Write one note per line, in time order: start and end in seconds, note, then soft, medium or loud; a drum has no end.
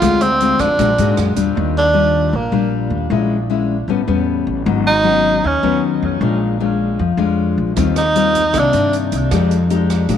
0.00 0.56 D2 medium
0.00 0.77 D3 medium
0.00 0.26 G#3 medium
0.00 0.27 C4 medium
0.00 0.23 F4 loud
0.00 0.27 F4 medium
0.00 kick medium
0.00 cross-stick medium
0.00 closed hi-hat medium
0.21 0.62 C4 medium
0.21 closed hi-hat soft
0.40 0.66 G#3 medium
0.40 0.67 C4 medium
0.40 0.67 F4 medium
0.40 closed hi-hat soft
0.59 0.77 F2 medium
0.59 1.18 D4 medium
0.59 kick medium
0.59 cross-stick medium
0.59 closed hi-hat soft
0.79 0.97 A#1 medium
0.79 1.54 A#2 medium
0.79 0.90 G#3 medium
0.79 0.90 D4 medium
0.79 0.91 F#4 medium
0.79 kick medium
0.79 closed hi-hat medium
0.98 1.16 G#2 medium
0.98 1.34 G#3 medium
0.98 1.34 D4 medium
0.98 1.34 F#4 medium
0.98 closed hi-hat soft
1.17 1.35 F#2 medium
1.17 cross-stick medium
1.17 closed hi-hat soft
1.36 1.54 E2 medium
1.36 1.92 G3 medium
1.36 1.93 D4 medium
1.36 1.93 F4 medium
1.36 closed hi-hat soft
1.55 2.30 D#2 loud
1.55 2.31 D#3 medium
1.78 2.38 D4 medium
1.94 2.33 G3 medium
1.94 2.33 D4 medium
1.94 2.33 F4 medium
2.33 2.51 A#1 medium
2.33 3.09 A#2 medium
2.33 2.74 A#3 medium
2.52 2.89 A#1 medium
2.52 3.07 G3 medium
2.52 3.08 D4 medium
2.52 3.08 F4 medium
2.90 3.09 D#2 medium
3.10 3.84 A#1 medium
3.10 3.86 A#2 medium
3.10 3.36 G#3 medium
3.10 3.36 C#4 soft
3.10 3.36 E4 medium
3.50 3.76 G#3 medium
3.50 3.76 C#4 medium
3.50 3.76 E4 medium
3.88 4.06 A1 medium
3.88 4.64 A2 medium
3.88 4.00 G3 soft
3.88 4.00 B3 medium
3.88 4.00 C#4 medium
4.08 4.44 E2 medium
4.08 4.63 G3 medium
4.08 4.63 B3 medium
4.08 4.63 C#4 medium
4.47 4.65 A1 medium
4.66 5.40 G#1 loud
4.66 5.41 G#2 medium
4.66 4.91 F#3 medium
4.66 4.91 B3 medium
4.66 4.91 C#4 medium
4.87 5.48 D#4 loud
5.04 5.43 F#3 medium
5.04 5.43 B3 medium
5.04 5.43 C#4 medium
5.44 5.62 D#2 medium
5.44 6.19 D#3 medium
5.44 5.84 C#4 medium
5.63 5.99 D#2 medium
5.63 6.18 F#3 medium
5.63 6.18 B3 medium
5.63 6.19 C#4 medium
6.02 6.20 F2 medium
6.21 6.94 A#1 loud
6.21 6.97 A#2 medium
6.21 6.57 G#3 medium
6.21 6.57 D4 medium
6.21 6.57 F4 medium
6.60 6.99 G#3 medium
6.60 6.99 D4 soft
6.60 6.99 F4 medium
6.99 7.17 F2 medium
6.99 7.75 F3 medium
7.17 7.54 F2 medium
7.17 7.73 G#3 medium
7.17 7.73 D4 medium
7.17 7.74 F4 medium
7.58 7.75 A#1 medium
7.76 8.50 D#2 loud
7.76 8.52 D#3 medium
7.76 8.01 G3 medium
7.76 8.01 C4 medium
7.76 8.02 F4 medium
7.76 kick medium
7.76 closed hi-hat medium
7.96 8.60 D#4 medium
7.96 cross-stick medium
7.96 closed hi-hat soft
8.15 8.41 G3 medium
8.15 8.42 C4 medium
8.15 8.41 F4 medium
8.15 closed hi-hat soft
8.35 kick soft
8.35 closed hi-hat soft
8.53 8.72 C2 medium
8.53 9.29 C3 medium
8.53 8.70 D#3 medium
8.53 8.70 A#3 medium
8.53 8.70 D4 medium
8.53 kick medium
8.53 cross-stick medium
8.53 closed hi-hat medium
8.59 8.95 D4 medium
8.72 9.09 G2 medium
8.72 9.28 D#3 medium
8.72 9.28 A#3 medium
8.72 9.28 D4 medium
8.72 closed hi-hat soft
8.93 closed hi-hat soft
9.12 9.30 C2 medium
9.12 kick soft
9.12 closed hi-hat soft
9.31 10.05 F2 loud
9.31 10.07 F3 medium
9.31 9.56 G#3 medium
9.31 9.57 D#4 medium
9.31 9.56 G4 medium
9.31 kick medium
9.31 cross-stick medium
9.31 closed hi-hat medium
9.51 closed hi-hat soft
9.70 10.07 G#3 medium
9.70 10.07 D#4 medium
9.70 10.08 G4 medium
9.70 closed hi-hat soft
9.90 kick soft
9.90 cross-stick medium
9.90 closed hi-hat soft
10.09 10.18 A#1 medium
10.09 10.18 A#2 medium
10.09 10.18 G#3 medium
10.09 10.18 D4 medium
10.09 10.18 F#4 medium
10.09 kick medium
10.09 closed hi-hat medium